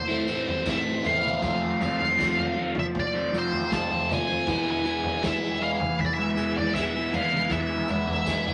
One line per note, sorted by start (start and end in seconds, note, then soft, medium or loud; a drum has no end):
0.00 1.38 E3 medium
0.00 4.42 A4 medium
0.00 0.70 C5 medium
0.00 4.41 C5 medium
0.00 4.41 C6 medium
0.08 0.28 A3 soft
0.08 0.28 C4 medium
0.08 0.29 E4 medium
0.28 0.45 A1 medium
0.28 0.65 E3 medium
0.28 0.65 A3 medium
0.28 0.66 C4 medium
0.28 0.66 E4 medium
0.28 tambourine medium
0.47 floor tom medium
0.65 1.31 A1 medium
0.65 1.23 A2 medium
0.65 1.02 E3 medium
0.65 0.86 A3 medium
0.65 0.85 C4 medium
0.65 0.83 E4 medium
0.65 kick medium
0.65 snare medium
0.65 tambourine medium
0.69 1.06 E5 medium
0.84 1.03 A3 soft
0.84 1.04 C4 medium
0.84 1.05 E4 medium
1.03 1.40 E3 medium
1.03 1.23 A3 medium
1.03 1.23 C4 medium
1.03 1.21 E4 medium
1.03 1.82 F5 medium
1.03 floor tom medium
1.03 tambourine medium
1.23 1.41 A3 medium
1.23 1.40 C4 medium
1.23 1.40 E4 medium
1.23 mid tom medium
1.41 2.72 F1 medium
1.41 1.78 F3 medium
1.41 1.80 A3 medium
1.41 1.80 C4 medium
1.41 4.43 F4 medium
1.41 1.81 F4 medium
1.41 kick loud
1.41 floor tom medium
1.41 tambourine medium
1.80 2.16 F3 medium
1.80 2.18 A3 medium
1.80 2.18 C4 medium
1.80 2.19 F4 medium
1.80 2.79 F5 medium
1.80 floor tom medium
1.80 tambourine medium
1.99 floor tom medium
2.18 2.55 F3 medium
2.18 2.38 A3 medium
2.18 2.37 C4 medium
2.18 2.36 F4 medium
2.18 kick medium
2.18 snare medium
2.18 floor tom medium
2.18 tambourine medium
2.37 2.56 A3 soft
2.37 2.57 C4 medium
2.37 2.58 F4 medium
2.37 floor tom medium
2.56 3.13 F3 medium
2.56 2.75 A3 medium
2.56 2.75 C4 medium
2.56 2.74 F4 medium
2.75 muted overdriven electric guitar stroke soft
2.75 floor tom medium
2.75 mid tom medium
2.79 2.84 E5 medium
2.95 kick loud
2.95 floor tom medium
2.95 mid tom medium
3.00 3.36 D5 medium
3.13 3.32 A3 soft
3.13 3.32 C4 medium
3.13 3.33 F4 medium
3.31 3.49 F1 medium
3.31 3.69 F3 medium
3.31 3.70 A3 medium
3.31 3.71 C4 medium
3.31 3.71 F4 medium
3.31 tambourine medium
3.38 3.74 C5 medium
3.52 floor tom medium
3.70 4.35 F1 medium
3.70 4.08 F3 medium
3.70 3.91 A3 medium
3.70 3.90 C4 medium
3.70 3.89 F4 medium
3.70 4.11 A5 medium
3.70 kick medium
3.70 snare medium
3.70 tambourine medium
3.90 4.09 A3 soft
3.90 4.09 C4 medium
3.90 4.10 F4 medium
3.90 floor tom medium
4.09 4.44 F3 medium
4.09 4.29 A3 medium
4.09 4.28 C4 medium
4.09 4.27 F4 medium
4.09 floor tom medium
4.09 mid tom medium
4.09 tambourine medium
4.13 4.69 G#5 loud
4.28 4.46 A3 soft
4.28 4.45 C4 medium
4.28 4.45 F4 medium
4.47 5.76 E1 medium
4.47 4.84 E3 medium
4.47 8.54 E3 medium
4.47 4.85 G#3 medium
4.47 4.85 B3 medium
4.47 4.87 E4 medium
4.47 8.54 G#4 medium
4.47 8.54 B4 soft
4.47 8.54 G#5 medium
4.47 kick loud
4.47 floor tom medium
4.47 tambourine medium
4.70 5.26 G#5 medium
4.85 5.22 E3 medium
4.85 5.23 G#3 medium
4.85 5.24 B3 medium
4.85 5.24 E4 medium
4.85 tambourine medium
5.03 floor tom medium
5.22 5.60 E3 medium
5.22 5.44 G#3 medium
5.22 5.43 B3 medium
5.22 5.41 E4 medium
5.22 5.62 E5 medium
5.22 kick medium
5.22 snare medium
5.22 floor tom medium
5.22 tambourine medium
5.42 5.61 G#3 soft
5.42 5.61 B3 medium
5.42 5.62 E4 medium
5.60 6.36 E3 medium
5.60 5.80 G#3 medium
5.60 5.79 B3 medium
5.60 5.79 E4 medium
5.60 6.00 F5 medium
5.80 muted overdriven electric guitar stroke soft
5.80 floor tom medium
5.80 mid tom medium
5.99 6.05 E5 medium
5.99 kick medium
5.99 floor tom medium
5.99 mid tom medium
6.06 6.12 D5 medium
6.14 6.38 E4 medium
6.14 6.57 E5 medium
6.18 6.35 G#3 soft
6.18 6.36 B3 medium
6.36 6.52 E1 medium
6.36 6.73 E3 medium
6.36 6.73 G#3 medium
6.36 6.74 B3 medium
6.36 6.75 E4 medium
6.36 tambourine medium
6.57 6.74 D5 medium
6.57 floor tom medium
6.73 7.39 E1 medium
6.73 7.11 E3 medium
6.73 6.94 G#3 medium
6.73 6.93 B3 medium
6.73 6.93 E4 medium
6.73 7.13 E5 medium
6.73 kick medium
6.73 snare medium
6.73 tambourine medium
6.93 7.11 G#3 soft
6.93 7.12 B3 medium
6.93 7.13 E4 medium
7.12 7.49 E3 medium
7.12 7.32 G#3 medium
7.12 7.31 B3 medium
7.12 7.30 E4 medium
7.12 7.52 F5 medium
7.12 floor tom medium
7.12 tambourine medium
7.30 7.49 G#3 soft
7.30 7.50 B3 medium
7.30 7.51 E4 medium
7.30 mid tom medium
7.49 8.54 E1 medium
7.49 7.87 E3 medium
7.49 7.87 G#3 medium
7.49 7.88 B3 medium
7.49 7.89 E4 medium
7.49 7.89 E5 medium
7.49 kick loud
7.49 floor tom medium
7.49 tambourine medium
7.88 8.25 E3 medium
7.88 8.25 G#3 medium
7.88 8.26 B3 medium
7.88 8.27 E4 medium
7.88 8.54 E5 medium
7.88 floor tom medium
7.88 tambourine medium
8.08 floor tom medium
8.25 8.54 E3 medium
8.25 8.46 G#3 medium
8.25 8.45 B3 medium
8.25 8.44 E4 medium
8.25 kick loud
8.25 snare medium
8.25 floor tom medium
8.25 tambourine medium
8.45 8.54 G#3 soft
8.45 8.54 B3 medium
8.45 8.54 E4 medium
8.45 floor tom medium